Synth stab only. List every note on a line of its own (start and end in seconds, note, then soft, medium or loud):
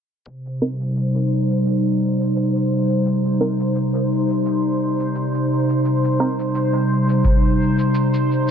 0.62 0.77 C4 medium
0.62 0.77 D#4 medium
0.62 0.77 A#4 medium
3.41 3.56 C4 medium
3.41 3.56 D#4 medium
3.41 3.56 A#4 medium
6.20 6.36 C4 medium
6.20 6.36 D#4 medium
6.20 6.36 A#4 medium